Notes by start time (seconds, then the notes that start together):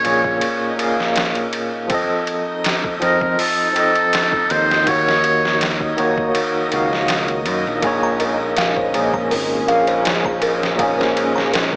Already playing: A#2 A#3 C#4 D#4 G#4 C#5 D#5
0.04 A#1 A#2 A#3 G#4 C#5, ride
0.24 kick
0.41 ride
0.76 A#2 A#3, ride
0.81 G#4 F5
1.00 snare
1.16 snare, ride
1.35 ride
1.53 ride
1.87 F3 C4, kick, ride
1.92 A4 D#5
2.27 ride
2.64 snare, ride
2.84 kick
3.00 F2 F3 C4 A#4 C5 D#5, ride
3.21 kick
3.39 A4, open hi-hat
3.73 F3 C4, ride
3.77 A4 D#5
3.95 ride
4.13 snare, ride
4.33 kick
4.50 D#2 C5, ride
4.71 snare
4.84 D#3 A#3, kick, ride
4.88 F#4 C#5
5.08 snare
5.24 ride
5.45 snare
5.61 snare, ride
5.80 kick
5.97 D#2 D#3 A#3 F#4 C#5, ride
6.18 kick
6.35 ride
6.69 D#3 A#3, ride
6.73 C#2 F#4 F5
6.93 snare
7.08 snare, ride
7.28 ride
7.46 F#2, ride
7.67 A#1
7.80 A#1 A#2 A#3 C#4, kick, ride
7.84 G#3 G#4 C#5
8.03 A#5
8.20 A#4, ride
8.57 F5, snare, ride
8.77 C5, kick
8.93 A#1 A#2 A#3 C#4 G#4, ride
9.14 A#5, kick
9.31 G#1 A#4, open hi-hat
9.65 A#2 A#3 F5, ride
9.69 A#1 G#4 F5
9.87 C5, ride
10.05 snare, ride
10.25 A#5, kick
10.42 A#4, ride
10.63 snare
10.75 A#2 A#3 F5, kick, ride
10.80 C#4 G#4
10.99 C5, snare
11.17 ride
11.36 A#5, snare
11.53 A#4, snare, ride
11.73 kick